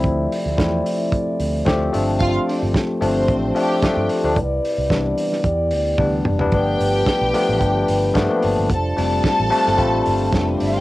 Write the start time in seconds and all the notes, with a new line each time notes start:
Already playing: C3 F3 A3 C4 E4 D5
0.04 D2, kick, closed hi-hat
0.32 open hi-hat
0.46 D2
0.58 E2 F3 A3 C4 E4, kick, snare, closed hi-hat
0.86 open hi-hat
1.12 kick, closed hi-hat
1.40 D2, open hi-hat
1.65 D2 F3 A3 C4 G4, kick, snare, closed hi-hat
1.93 G1 F3 A3 C4 D4 G4 C5, open hi-hat
2.20 F4 F5, kick, closed hi-hat
2.48 D4 D5, open hi-hat
2.63 G1
2.74 kick, snare, closed hi-hat
3.01 G1 F3 A3 C4 D4 C5, open hi-hat
3.28 A1, kick, closed hi-hat
3.54 F3 A3 C4 D4 G4 G5, open hi-hat
3.82 F3 A3 C4 D4, muted picked electric bass stroke, kick, snare, closed hi-hat
3.97 G2
4.09 open hi-hat
4.24 D2 F3 A3 C4 D4
4.36 C2 C3 E4 B4 D5, kick, closed hi-hat
4.65 open hi-hat
4.78 C2
4.90 C2 E3 G3 B3 D4, kick, snare, closed hi-hat
5.18 open hi-hat
5.32 snare
5.44 E2 B3 G4, kick, closed hi-hat
5.71 D2, open hi-hat
5.98 D2 E3 G3 B3 D4, kick, high tom
6.25 F1, mid tom
6.39 E3 G3 B3 D4, floor tom
6.52 G1 F3 G3 A3 B3 D4 F4 G4 B4 G5, kick, closed hi-hat
6.80 G1, open hi-hat
7.06 kick, snare, closed hi-hat
7.21 B1
7.34 F3 A3 B3 D4, open hi-hat
7.49 A1
7.61 G1, kick, closed hi-hat
7.88 G1, open hi-hat
8.14 G2 F3 A3 B3 D4, kick, snare, closed hi-hat
8.29 F3 A3 A#3 D4
8.36 B3
8.42 G1, open hi-hat
8.59 G1
8.70 F1 D4 F4 A4 C5 A5, kick, closed hi-hat
8.97 F1 G3 A3 C4 D4, open hi-hat
9.24 kick, snare, closed hi-hat
9.40 A1
9.50 G3 A3 C4 D4, open hi-hat
9.67 G1, snare
9.77 A1 G3 A3 C4 F4, kick, closed hi-hat
10.06 G1, open hi-hat
10.33 F1, kick, snare, closed hi-hat
10.39 A3 A4
10.47 B3 B4
10.54 C4 C5
10.59 G1 D4 D5, open hi-hat
10.66 E4 E5
10.73 F4 F5